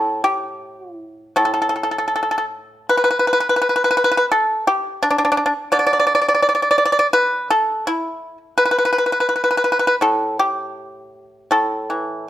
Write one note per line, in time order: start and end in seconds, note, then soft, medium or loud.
0.00 1.35 A2 soft
0.00 0.21 A4 medium
0.24 0.97 G4 medium
0.97 1.34 E4 medium
1.36 3.59 A2 soft
1.36 1.44 A4 medium
1.45 1.52 A4 soft
1.54 1.60 A4 soft
1.62 1.68 A4 soft
1.69 1.75 A4 soft
1.76 1.82 A4 soft
1.83 1.90 A4 soft
1.91 1.97 A4 soft
1.98 2.06 A4 soft
2.08 2.14 A4 soft
2.16 2.22 A4 soft
2.23 2.29 A4 soft
2.31 2.37 A4 soft
2.38 2.44 A4 soft
2.89 2.95 B4 medium
2.97 3.03 B4 soft
3.04 3.09 B4 medium
3.11 3.17 B4 soft
3.19 3.25 B4 medium
3.27 3.32 B4 soft
3.33 3.39 B4 soft
3.40 3.46 B4 soft
3.49 3.54 B4 soft
3.56 3.60 B4 soft
3.62 3.68 B4 soft
3.69 3.75 B4 soft
3.76 3.82 B4 soft
3.84 3.89 B4 soft
3.91 3.96 B4 medium
3.97 4.03 B4 soft
4.04 4.10 B4 medium
4.12 4.16 B4 medium
4.17 4.25 B4 medium
4.32 4.65 A4 medium
4.67 5.01 G4 medium
5.03 5.09 D4 medium
5.11 5.17 D4 soft
5.18 5.23 D4 medium
5.25 5.31 D4 soft
5.32 5.36 D4 medium
5.37 5.44 D4 soft
5.46 5.52 D4 medium
5.72 7.86 D3 soft
5.72 5.78 D5 medium
5.79 5.85 D5 medium
5.87 5.92 D5 medium
5.93 5.98 D5 soft
6.00 6.05 D5 medium
6.07 6.14 D5 soft
6.15 6.20 D5 medium
6.22 6.27 D5 soft
6.29 6.33 D5 medium
6.35 6.41 D5 soft
6.42 6.48 D5 medium
6.49 6.54 D5 soft
6.55 6.61 D5 medium
6.62 6.70 D5 soft
6.71 6.77 D5 medium
6.78 6.84 D5 medium
6.85 6.91 D5 medium
6.92 6.98 D5 medium
6.99 7.06 D5 medium
7.13 7.47 B4 medium
7.50 7.84 A4 medium
7.87 8.37 E4 medium
8.58 8.64 B4 medium
8.65 8.70 B4 soft
8.71 8.77 B4 medium
8.79 8.84 B4 soft
8.85 8.91 B4 medium
8.93 8.97 B4 soft
8.98 9.05 B4 soft
9.06 9.11 B4 soft
9.12 9.19 B4 soft
9.20 9.28 B4 soft
9.29 9.34 B4 soft
9.36 9.43 B4 soft
9.44 9.49 B4 soft
9.51 9.56 B4 soft
9.57 9.63 B4 soft
9.64 9.71 B4 soft
9.72 9.78 B4 soft
9.79 9.86 B4 soft
9.87 9.94 B4 medium
10.01 11.50 A2 soft
10.01 10.37 A4 medium
10.39 11.49 G4 medium
11.51 12.29 A2 soft
11.51 12.29 A4 medium
11.90 12.29 E3 soft